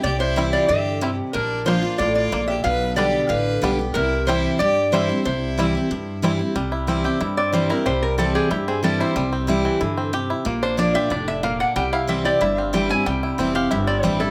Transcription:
<<
  \new Staff \with { instrumentName = "Resonator guitar played with a steel bar" } { \time 4/4 \key c \mixolydian \tempo 4 = 184 d''8 c''4 d''8 e''4. r8 | bes'4 c''4 d''8 d''4 e''8 | f''4 d''4 f''4. r8 | bes'4 c''4 d''4 c''4 |
c''2. r4 | r2 r8 d''8 c''8 bes'8 | c''8 bes'8 a'8 aes'8 g'8 aes'8 a'8 c''8~ | c''8 r2. r8 |
r8 c''8 d''8 e''8 d''8 e''8 f''8 fis''8 | g''8 f''8 e''8 d''8 e''8 f''8 g''8 aes''8 | g''4. f''8 e''8 d''8 c''8 a'8 | }
  \new Staff \with { instrumentName = "Fiddle" } { \time 4/4 \key c \mixolydian g'8 e'4 f'8 g'4. r8 | d'4 f'4 f'8 f'4 g'8 | b'4 g'4 b'4. r8 | e'4 e'4 g'4 e'4 |
e'2. r4 | r1 | r1 | r1 |
r1 | r1 | r1 | }
  \new Staff \with { instrumentName = "Five-string banjo" } { \time 4/4 \key c \mixolydian r4 <g c' e'>8 r4. <g c' e'>8 r8 | r4 <bes d'>8 r4. <bes d'>8 r8 | r4 <g b d'>8 r4. <g b d'>8 r8 | r4 <g c' e'>8 r4. <g c' e'>8 r8 |
r4 <g c' e'>8 r4. <g c' e'>8 r8 | g8 e'8 c'8 g'8 e'8 c'8 g8 e'8 | g4 c'8 g'8 e'8 c'8 g8 e'8 | g8 c'8 e'8 e8 e'8 c'8 g'8 e'8 |
bes8 d'8 d'8 g'8 d'8 d'8 bes8 d'8 | g8 e'8 c'8 g'8 e'8 c'8 g8 e'8 | g8 e'8 c'8 g'8 e'8 c'8 g8 e'8 | }
  \new Staff \with { instrumentName = "Steel-string acoustic guitar" } { \time 4/4 \key c \mixolydian << { r4 <e g c' e'>4 r2 | r4 <f bes d' f'>8 <d' f'>8 r2 | r4 <d g b g'>4 r4 <d g b g'>8 <b g'>8 | r4 <e g c' e'>4 r4 <e g c' e'>8 <c' e'>8 |
r4 <e g c' e'>8 <c' e'>8 r4 <e g c' e'>8 <c' e'>8 | r4 <e g c' e'>8 <c' e'>8 r4 <e g c' e'>8 <c' e'>8 | r4 <e g c' e'>4 r4 <e g c' e'>4 | r4 <e g c' e'>4 r2 |
r4 <f bes d' f'>8 <d' f'>8 r2 | r4 <e g c' e'>8 <c' e'>8 r4 <e g c' e'>8 <c' e'>8 | r4 <e g c' e'>8 <c' e'>8 r4 <e g c' e'>8 <c' e'>8 | } \\ { c2 d4 c4 | bes,2 a,4 bes,4 | b,2 d2 | c2 g,2 |
c2 g,2 | c2 g,2 | c2 g,2 | c2 d4 c4 |
bes,2 a,4 bes,4 | c2 g,2 | c2 g,2 | } >> }
  \new Staff \with { instrumentName = "Upright bass" } { \clef bass \time 4/4 \key c \mixolydian c,2 g,2 | bes,,2 a,,4 bes,,4 | b,,2 a,,4 b,,4 | c,2 g,2 |
c,2 g,2 | c,2 g,2 | c,2 g,2 | c,2 g,2 |
bes,,2 f,,2 | c,2 g,,2 | c,4 f,,4 g,,4 a,,4 | }
>>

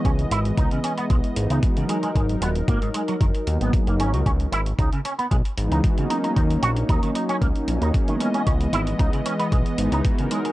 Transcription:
<<
  \new Staff \with { instrumentName = "Analog synth pad" } { \time 4/4 \key cis \dorian \tempo 4 = 114 <e gis b dis''>2~ <e gis b dis''>8 <e gis b dis'>8 <e gis b fis'>16 <fis dis' ais'>8.~ | <fis dis' ais'>2~ <fis dis' ais'>8 <fis ais b dis'>8 <fis ais b gis'>16 <fis dis' ais'>8. | r2 r8 <e gis b dis'>8 <e gis b fis'>16 <fis ais cis' dis'>8.~ | <fis ais cis' dis'>2~ <fis ais cis' dis'>8 <fis ais cis' dis'>8 <fis ais cis' gis'>16 <e gis b dis''>8.~ |
<e gis b dis''>2~ <e gis b dis''>8 <e gis b dis'>8 <e gis b fis'>16 <fis dis' ais'>8. | }
  \new Staff \with { instrumentName = "Clean electric guitar" } { \time 4/4 \key cis \dorian cis'16 r16 e'16 r16 dis'16 cis16 cis'16 b16 gis16 r8 dis'16 r16 cis16 gis16 gis16 | gis16 r16 b16 r16 ais16 gis,16 gis16 fis16 dis16 r8 b16 r16 ais16 cis'16 fis16 | cis'16 r16 e'16 r16 dis'16 cis16 cis'16 b16 gis16 r8 dis'16 r16 cis16 dis'16 dis'16 | dis'16 r16 fis'16 r16 dis'16 dis16 dis'16 cis'16 ais16 r8 dis'16 r16 dis16 cis'16 cis'16 |
cis'16 r16 e'16 r16 dis'16 cis16 cis'16 b16 gis16 r8 dis'16 r16 cis16 gis16 gis16 | }
  \new Staff \with { instrumentName = "Analog synth bass" } { \clef bass \time 4/4 \key cis \dorian cis,8 gis,,8 cis,16 r8. b,,16 r16 gis,,16 cis,16 r4 | gis,,8 dis,,8 gis,,16 r8. fis,,16 r16 dis,16 gis,,16 r16 fis,,16 gis,,16 cis,16 | cis,8 gis,,8 cis,16 r8. b,,16 r16 gis,,16 cis,16 r4 | dis,8 ais,,8 dis,16 r8. cis,16 r16 ais,,16 dis,16 r4 |
cis,8 gis,,8 cis,16 r8. b,,16 r16 gis,,16 cis,16 r4 | }
  \new DrumStaff \with { instrumentName = "Drums" } \drummode { \time 4/4 <hh bd>16 hh16 hh16 hh16 <hh bd>16 hh16 hh16 hh16 <hh bd>16 hh16 hh16 hh16 <hh bd>16 hh16 hh16 hh16 | <hh bd>16 hh16 hh16 hh16 <hh bd>16 hh16 hh16 hh16 <hh bd>16 hh16 hh16 hh16 <hh bd>16 hh16 hh16 hh16 | <hh bd>16 hh16 hh16 hh16 <hh bd>16 hh16 hh16 hh16 <hh bd>16 hh16 hh16 hh16 <hh bd>16 hh16 hh16 hh16 | <hh bd>16 hh16 hh16 hh16 <hh bd>16 hh16 hh16 hh16 <hh bd>16 hh16 hh16 hh16 <hh bd>16 hh16 hh16 hh16 |
<hh bd>16 hh16 hh16 hh16 <hh bd>16 hh16 hh16 hh16 <hh bd>16 hh16 hh16 hh16 <hh bd>16 hh16 hh16 hh16 | }
>>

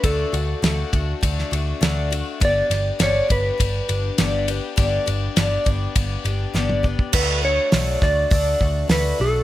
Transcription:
<<
  \new Staff \with { instrumentName = "Clean electric guitar" } { \time 4/4 \key d \major \tempo 4 = 102 a'4. r2 r8 | d''4 cis''8 b'2~ b'8~ | b'2. r4 | b'8 cis''4 d''4. b'8 a'8 | }
  \new Staff \with { instrumentName = "Twelve-string acoustic guitar" } { \time 4/4 \key d \major <d a d' fis'>8 <a d' fis'>8 <d a d' fis'>8 <a d' fis'>8 <d a d' fis'>8 <a d' fis'>8 <d a d' fis'>8 <a d' fis'>8 | <g, d g b d' g'>8 <g b d' g'>8 <g, d g b d' g'>8 <g b d' g'>8 <g b d' g'>8 <g b d' g'>8 <g, d g b d' g'>8 <g b d' g'>8 | <g, d g b d' g'>8 <g b d' g'>8 <g, d g b d' g'>8 <g b d' g'>8 <g b d' g'>8 <g b d' g'>8 <g, d g b d' g'>8 <g b d' g'>8 | <d a d' fis'>8 <a d' fis'>8 <d a d' fis'>8 <a d' fis'>8 <d a d' fis'>8 <a d' fis'>8 <d a d' fis'>8 <a d' fis'>8 | }
  \new Staff \with { instrumentName = "Picked electric bass" } { \clef bass \time 4/4 \key d \major d,8 d,8 d,8 d,8 d,8 d,8 d,4 | g,,8 g,,8 g,,8 g,,8 g,,8 g,,8 g,,4 | g,,8 g,,8 g,,8 g,,8 g,,8 g,,8 g,,4 | d,4 b,,8 d,8 d,8 d,8 d,8 b,,8 | }
  \new DrumStaff \with { instrumentName = "Drums" } \drummode { \time 4/4 <bd cymr>8 cymr8 <cymr sn>8 <bd cymr>8 <bd cymr>16 sn16 cymr8 <cymr sn>8 cymr8 | <bd cymr>8 <cymr sn>8 <cymr sn>8 <bd cymr>8 <bd cymr>8 cymr8 <cymr sn>8 cymr8 | <bd cymr>8 cymr8 <cymr sn>8 <bd cymr>8 <bd cymr>8 cymr8 sn16 toml16 bd16 bd16 | <cymc bd>4 <hho sn>8 <bd sn>8 <hho bd>8 bd8 <hho sn>4 | }
>>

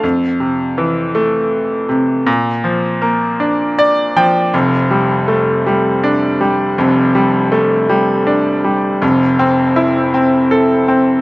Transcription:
<<
  \new Staff \with { instrumentName = "Grand piano" } { \time 6/8 \key g \dorian \tempo 4. = 54 r2. | r2 d''8 g''8 | r2. | r2. |
r2. | }
  \new Staff \with { instrumentName = "Grand piano" } { \clef bass \time 6/8 \key g \dorian f,8 c8 e8 a4 c8 | bes,8 f8 bes8 d'4 f8 | <f,, f,>8 g8 a8 g8 d'8 g8 | <f,, f,>8 g8 a8 g8 d'8 g8 |
<f,, f,>8 c'8 e'8 c'8 a'8 c'8 | }
>>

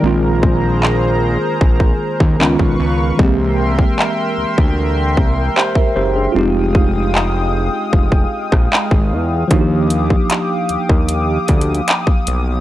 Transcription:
<<
  \new Staff \with { instrumentName = "Analog synth pad" } { \time 4/4 \key ees \major \tempo 4 = 76 << { <aes' bes' bes''>2. <ces'' f'' des'''>4 | <bes' g'' c'''>1 | <aes g'' ees'''>1 | <g' d''' ees'''>1 | } \\ { c''2. r4 | e''1 | f''1~ | f''1 | } >> }
  \new Staff \with { instrumentName = "Tine electric piano" } { \time 4/4 \key ees \major << { r1 | r2. <g' c''>16 <bes' e''>16 <g' c''>16 <d' aes'>16~ | <d' aes'>16 r2. r8. | r1 | } \\ { <ees aes bes c' f'>2. <ees aes ces' des' f'>4 | <e aes bes c' g'>1 | <g aes c' ees' f' g'>1 | <f bes d' ees' ges' g'>1 | } >> }
  \new Staff \with { instrumentName = "Analog synth bass" } { \clef bass \time 4/4 \key ees \major bes,,4.~ bes,,16 r16 bes,,8 r16 ees,16 des,16 ces,16 des,8 | c,4 r8 d,16 d,8. c,8 r8 ges,,8 | f,,4.~ f,,16 r16 f,,8 r16 bes,,16 r16 aes,,16 fes,8 | ees,4 r8 ees,16 ees,8. d,8 r8 ces,8 | }
  \new DrumStaff \with { instrumentName = "Drums" } \drummode { \time 4/4 r8 bd8 hc4 bd16 bd8 bd16 hc16 bd8. | bd8. bd16 hc8. bd16 r8 bd8 hc16 bd8. | r8 bd8 hc4 bd16 bd8 <bd ss>16 hc16 bd8. | <hh bd>8 hh16 bd16 <hc hh>8 hh16 bd16 \tuplet 3/2 { hh16 r16 r16 <hh bd>16 hh16 hh16 } <hc hh>16 bd16 hh8 | }
>>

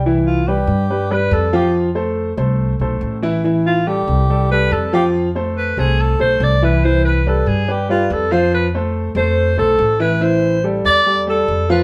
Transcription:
<<
  \new Staff \with { instrumentName = "Alto saxophone" } { \time 4/4 \key c \major \tempo 4 = 142 r8 f'8 g'4. b'8 a'8 g'8 | r1 | r8 f'8 g'4. b'8 a'8 g'8 | r4 b'8 aes'8 a'8 c''8 d''8 b'8 |
c''8 b'8 a'8 aes'8 g'8 f'8 a'8 c''8 | b'8 r4 c''4 a'4 b'8 | c''4 r8 d''4 a'4 b'8 | }
  \new Staff \with { instrumentName = "Grand piano" } { \time 4/4 \key c \major <e e' e''>4 <g g' b'>4 <g g' b'>8 <g g' b'>4 <f f' f''>8~ | <f f' f''>8 <a a' c''>4 <a a' c''>4 <a a' c''>4 <e e' e''>8 | <e e' e''>4 <g g' a'>4 <g g' a'>8 <g g' a'>4 <f f' f''>8~ | <f f' f''>8 <a a' c''>4 <a a' c''>4 <a a' c''>4 <e e' e''>8 |
<e e' e''>4 <g g' b'>4 <g g' b'>8 <g g' b'>4 <f f' f''>8~ | <f f' f''>8 <a a' c''>4 <a a' c''>4 <a a' c''>4 <e e' e''>8 | <e e' e''>4 <g g' a'>4 <g g' a'>8 <g g' a'>4 <f f' f''>8 | }
  \new Staff \with { instrumentName = "Upright bass" } { \clef bass \time 4/4 \key c \major c,4. g,4. f,4~ | f,4. c,4 b,,8 a,,4~ | a,,4. c,4. f,4~ | f,4. c,4 b,,8 c,4~ |
c,4. g,4. f,4~ | f,4. f,4 b,,8 a,,4~ | a,,4. e,4. f,4 | }
>>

